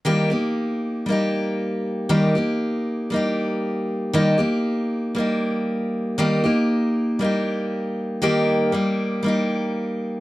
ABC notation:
X:1
M:4/4
L:1/8
Q:1/4=118
K:Eb
V:1 name="Steel-string acoustic guitar"
[E,G,B,EG] [B,EG]3 [G,B,EG]4 | [E,G,B,EG] [B,EG]3 [G,B,EG]4 | [E,G,B,EG] [B,EG]3 [G,B,EG]4 | [E,G,B,EG] [B,EG]3 [G,B,EG]4 |
[E,G,B,EG]2 [G,B,EG]2 [G,B,EG]4 |]